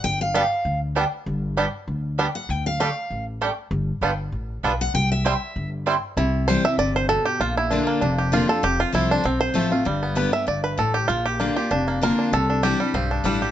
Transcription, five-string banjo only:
0.34 0.42 G3 medium
0.34 0.42 B3 medium
0.34 0.42 D4 medium
0.96 1.03 G3 medium
0.96 1.03 B3 medium
0.96 1.04 D4 medium
1.57 1.64 G3 medium
1.57 1.65 B3 medium
1.57 1.65 D4 medium
2.19 2.26 G3 medium
2.19 2.26 B3 medium
2.19 2.26 D4 medium
2.80 2.87 G3 medium
2.80 2.83 D4 medium
3.42 3.48 G3 medium
3.42 3.44 D4 medium
4.03 4.10 G3 medium
4.03 4.10 B3 medium
4.03 4.10 D4 medium
4.64 4.71 G3 medium
4.64 4.71 B3 medium
4.64 4.71 D4 medium
5.26 5.33 G3 medium
5.26 5.33 C4 medium
5.26 5.33 E4 medium
5.87 5.94 G3 medium
5.87 5.94 C4 medium
5.87 5.94 E4 medium
6.17 6.61 E4 medium
6.48 6.65 C5 medium
6.65 6.78 E5 loud
6.79 6.96 D5 loud
6.96 7.08 C5 medium
7.09 7.26 A4 medium
7.25 7.40 G4 medium
7.41 7.57 F4 medium
7.57 7.86 E4 medium
7.71 8.00 D4 medium
7.87 8.29 A#3 medium
8.01 8.45 D4 medium
8.18 8.60 G4 medium
8.33 8.49 F4 medium
8.49 8.64 A4 medium
8.64 8.80 G4 loud
8.80 8.94 F4 medium
8.95 9.10 E4 medium
9.11 9.24 D4 medium
9.25 9.40 C4 medium
9.41 9.69 C5 loud
9.55 9.86 A3 medium
9.72 9.86 F4 medium
9.86 10.30 G3 medium
10.03 10.45 B3 medium
10.17 10.32 B4 medium
10.33 10.47 E5 loud
10.48 10.63 D5 loud
10.64 10.79 B4 medium
10.79 10.96 A4 medium
10.94 11.09 G4 medium
11.08 11.26 F4 medium
11.26 11.54 G4 medium
11.40 11.84 A#3 medium
11.56 11.99 G4 medium
11.71 12.18 D4 medium
11.88 12.30 A#3 medium
12.03 12.31 A#4 loud
12.19 12.49 D4 medium
12.34 12.65 A4 loud
12.50 12.92 D4 medium
12.63 13.37 G4 medium
12.80 13.25 G3 medium
12.95 13.38 C4 medium
13.11 13.51 D4 medium
13.25 13.51 G3 medium
13.42 13.51 G4 medium

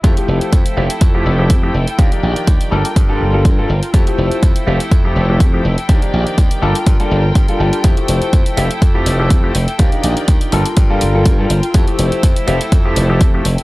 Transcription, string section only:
0.04 1.97 E4 medium
0.04 1.97 A4 medium
0.04 3.90 G5 medium
1.99 2.72 D#3 medium
1.99 2.71 D5 medium
2.72 3.93 F4 medium
2.72 3.93 A#4 medium
3.93 5.87 E4 medium
3.93 5.87 A4 medium
3.93 13.63 G5 medium
5.89 6.61 D#3 medium
5.89 6.62 D5 medium
6.62 7.83 F4 medium
6.62 7.83 A#4 medium
7.84 9.77 E4 medium
7.84 9.77 A4 medium
9.80 10.52 D#3 medium
9.80 10.52 D5 medium
10.52 11.73 F4 medium
10.52 11.73 A#4 medium
11.74 13.63 E4 medium
11.74 13.63 A4 medium

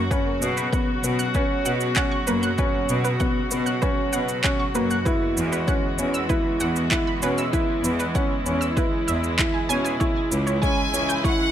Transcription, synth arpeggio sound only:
0.11 0.18 B4 medium
0.57 0.65 B4 medium
0.72 0.77 F#5 medium
1.19 1.24 F#6 medium
1.35 1.42 B4 medium
1.66 1.73 F#5 medium
1.96 2.01 F#5 medium
2.11 2.19 C#6 medium
2.27 2.38 B4 medium
2.43 2.50 F#6 medium
2.58 2.66 B4 medium
3.04 3.12 B4 medium
3.20 3.25 F#5 medium
3.66 3.71 F#6 medium
3.82 3.89 B4 medium
4.13 4.20 F#5 medium
4.44 4.48 F#5 medium
4.59 4.67 C#6 medium
4.75 4.86 B4 medium
4.91 4.98 F#6 medium
5.05 5.13 B4 medium
5.52 5.60 B4 medium
5.68 5.72 F#5 medium
6.14 6.18 E6 medium
6.29 6.37 B4 medium
6.61 6.68 F#5 medium
6.92 6.96 F#5 medium
7.07 7.14 B5 medium
7.23 7.34 B4 medium
7.38 7.45 E6 medium
7.53 7.61 B4 medium
8.00 8.07 B4 medium
8.15 8.19 F#5 medium
8.61 8.66 E6 medium
8.77 8.84 B4 medium
9.08 9.19 E5 medium
9.38 9.43 B5 medium
9.54 9.59 G#5 medium
9.69 9.77 G#5 loud
9.85 9.89 G#5 medium
10.00 10.08 C#5 medium
10.47 10.54 C#5 medium
10.62 10.67 G#5 medium
11.09 11.13 G6 medium
11.24 11.32 C#5 medium

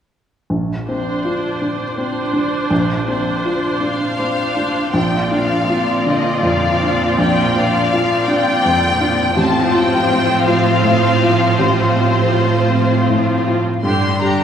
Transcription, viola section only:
0.87 1.96 D4 soft
0.87 1.96 C5 soft
1.98 3.05 D4 soft
1.98 3.05 C5 soft
3.07 4.16 D4 soft
3.07 4.16 C5 soft
4.18 4.93 D4 soft
4.18 4.93 C5 soft
4.96 9.34 F3 soft
4.96 9.34 C4 soft
9.36 13.60 F3 soft
9.36 13.60 C4 medium
13.84 14.20 D3 soft
13.84 14.20 D4 soft
14.21 14.44 D3 soft
14.21 14.44 D4 soft

